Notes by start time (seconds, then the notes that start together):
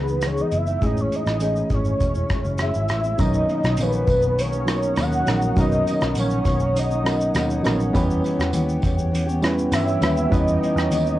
Already playing: C#2 E3 B3 D#4 G#4 B4
0.08 G#3 B3 D#4, shaker
0.21 E3 G#3 B3 D#4, cross-stick, closed hi-hat, shaker
0.26 C#5
0.37 G#3 B3 D#4 D#5, shaker
0.52 F#1, closed hi-hat, shaker
0.57 E5
0.67 G#3 B3 D#4, shaker
0.81 A1 A2 E3 G#3 A3 C#4 G#4, kick, closed hi-hat, shaker
0.85 E4 D#5
0.97 C#5, shaker
1.12 D#5, closed hi-hat, shaker
1.26 A1 G#3 C#4 E4, cross-stick, shaker
1.40 A2 E3 G#3 A3 C#4 G#4, closed hi-hat, shaker
1.44 E4
1.56 shaker
1.70 G#1 A2 G#3 C#4 E4 C#5, kick, closed hi-hat, shaker
1.85 shaker
2.01 E1, kick, closed hi-hat, shaker
2.15 G#3 C#4 E4, shaker
2.30 A2 G#3 C#4, muted picked electric bass stroke, kick, cross-stick, closed hi-hat, shaker
2.34 E4
2.45 F#1, shaker
2.58 A2 G#3 C#4 E5, cross-stick, closed hi-hat, shaker
2.63 E4
2.74 G#1 G#3 C#4 E4, shaker
2.89 A1, cross-stick, closed hi-hat, shaker
3.04 G#3 C#4 E4, shaker
3.18 B1 B2 D#3 F#3 A#3 B3 C#4 D#4 C#5 D#5 F#5 A#5 D#6, kick, closed hi-hat, tambourine, shaker
3.34 shaker
3.48 B2 D#3 A#3 C#4, closed hi-hat, shaker
3.64 B1, cross-stick, shaker
3.77 A#1 B2 D#3 A#3 C#4, closed hi-hat, tambourine, shaker
3.82 B4
3.92 shaker
4.07 B1 B2 D#3 A#3 C#4, kick, closed hi-hat, tambourine, shaker
4.22 A#3 C#4, shaker
4.28 D#3
4.39 B2 D#3 A#3 C#4 C#5, closed hi-hat, tambourine, shaker
4.53 D#3 A#3 C#4, shaker
4.66 F#3 B3 C#4 D#4 A#4, cross-stick, closed hi-hat, tambourine, shaker
4.83 shaker
4.96 D#2 B2 D#3 A#3 C#4 F#5, cross-stick, closed hi-hat, tambourine, shaker
5.12 shaker
5.26 A#1 B2 D#3 F#3 A#3 B3 C#4 D#4 A#4, cross-stick, closed hi-hat, tambourine, shaker
5.30 C#4
5.42 D#3 A#3 C#4, shaker
5.56 B1 B2 D#3 F#3 A#3 B3 C#4 D#4 A#4, kick, closed hi-hat, tambourine, shaker
5.60 C#4 D#5
5.72 shaker
5.87 B2 D#3 A#3 C#4, closed hi-hat, tambourine, shaker
6.01 B1, cross-stick, shaker
6.15 A#1 B2 D#3 A#3 C#4, closed hi-hat, tambourine, shaker
6.20 C#5
6.30 shaker
6.45 B1 B2 D#3 A#3, kick, closed hi-hat, tambourine, shaker
6.49 C#4
6.60 A#3 C#4, shaker
6.64 D#3
6.75 B2 D#3 A#3 C#4 D#5, closed hi-hat, tambourine, shaker
6.90 D#3 A#3 C#4, shaker
7.04 F#3 B3 C#4 D#4 A#4, cross-stick, closed hi-hat, tambourine, shaker
7.21 shaker
7.35 D#2 B2 D#3 A#3 C#4, cross-stick, closed hi-hat, tambourine, shaker
7.50 shaker
7.63 A#1 B2 D#3 F#3 A#3 B3 C#4 D#4 A#4, cross-stick, closed hi-hat, tambourine, shaker
7.67 C#4
7.79 D#3 A#3 C#4, shaker
7.93 E2 E3 G3 B3 C#4 E4 G4 B4 G5, kick, closed hi-hat, tambourine, shaker
8.10 shaker
8.22 E3 B3 C#4 G4, closed hi-hat, tambourine, shaker
8.39 E2, cross-stick, shaker
8.52 D#2 E3 B3 C#4 G4, closed hi-hat, tambourine, shaker
8.69 shaker
8.81 E2 E3 B3 C#4 G4, kick, closed hi-hat, tambourine, shaker
8.96 B3 C#4 G4, shaker
9.11 E3 B3 C#4 G4, closed hi-hat, shaker
9.26 B3 C#4 G4, shaker
9.42 G3 B3 C#4 E4 B4, cross-stick, closed hi-hat, tambourine, shaker
9.59 shaker
9.71 G2 E3 B3 C#4 G4 E5, cross-stick, closed hi-hat, tambourine, shaker
9.88 shaker
10.01 D#2 E3 G3 B3 C#4 E4 G4 B4, cross-stick, closed hi-hat, tambourine, shaker
10.16 B3 C#4 G4, shaker
10.30 E2 E3 G3 B3 C#4 E4 G4 B4 D#5 C#6, kick, closed hi-hat, tambourine, shaker
10.48 shaker
10.61 E3 B3 C#4 G4, closed hi-hat, shaker
10.76 E2, cross-stick, shaker
10.91 D#2 E3 B3 C#4 G4, closed hi-hat, tambourine, shaker
11.06 shaker